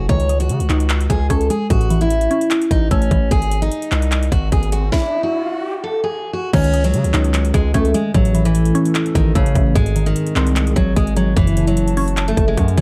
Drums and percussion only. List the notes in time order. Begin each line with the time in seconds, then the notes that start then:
0.09 kick, closed hi-hat
0.20 closed hi-hat
0.29 closed hi-hat
0.40 closed hi-hat
0.49 closed hi-hat
0.60 closed hi-hat
0.70 clap, closed hi-hat
0.80 closed hi-hat
0.90 clap, closed hi-hat
1.01 closed hi-hat
1.10 kick, closed hi-hat
1.30 kick, closed hi-hat
1.41 closed hi-hat
1.50 closed hi-hat
1.70 kick, closed hi-hat
1.81 closed hi-hat
1.90 closed hi-hat
2.01 closed hi-hat
2.10 closed hi-hat
2.21 closed hi-hat
2.31 closed hi-hat
2.41 closed hi-hat
2.51 clap, closed hi-hat
2.62 closed hi-hat
2.71 kick, closed hi-hat
2.91 kick, closed hi-hat
3.02 closed hi-hat
3.11 kick, closed hi-hat
3.31 kick, closed hi-hat
3.42 closed hi-hat
3.51 closed hi-hat
3.62 closed hi-hat
3.72 closed hi-hat
3.82 closed hi-hat
3.92 clap, closed hi-hat
4.02 closed hi-hat
4.12 clap, closed hi-hat
4.23 closed hi-hat
4.32 kick, closed hi-hat
4.52 kick, closed hi-hat
4.63 closed hi-hat
4.72 closed hi-hat
4.92 kick, snare
6.53 kick, closed hi-hat, crash
6.64 closed hi-hat
6.74 closed hi-hat
6.84 closed hi-hat
6.94 closed hi-hat
7.04 closed hi-hat
7.14 clap, closed hi-hat
7.24 closed hi-hat
7.34 clap, closed hi-hat
7.45 closed hi-hat
7.54 kick, closed hi-hat
7.74 kick, closed hi-hat
7.85 closed hi-hat
7.94 closed hi-hat
8.14 kick, closed hi-hat
8.25 closed hi-hat
8.35 closed hi-hat
8.45 closed hi-hat
8.55 closed hi-hat
8.65 closed hi-hat
8.75 closed hi-hat
8.85 closed hi-hat
8.95 clap, closed hi-hat
9.06 closed hi-hat
9.15 kick, closed hi-hat
9.35 kick, closed hi-hat
9.46 closed hi-hat
9.55 kick, closed hi-hat
9.76 kick, closed hi-hat
9.86 closed hi-hat
9.96 closed hi-hat
10.06 closed hi-hat
10.16 closed hi-hat
10.27 closed hi-hat
10.36 clap, closed hi-hat
10.47 closed hi-hat
10.56 clap, closed hi-hat
10.67 closed hi-hat
10.76 kick, closed hi-hat
10.96 kick, closed hi-hat
11.07 closed hi-hat
11.16 closed hi-hat
11.37 kick, closed hi-hat
11.47 closed hi-hat
11.57 closed hi-hat
11.67 closed hi-hat
11.77 closed hi-hat
11.88 closed hi-hat
11.97 closed hi-hat, open hi-hat
12.08 closed hi-hat
12.17 clap, closed hi-hat
12.28 closed hi-hat
12.37 kick, closed hi-hat
12.57 kick, closed hi-hat
12.68 closed hi-hat
12.78 kick, closed hi-hat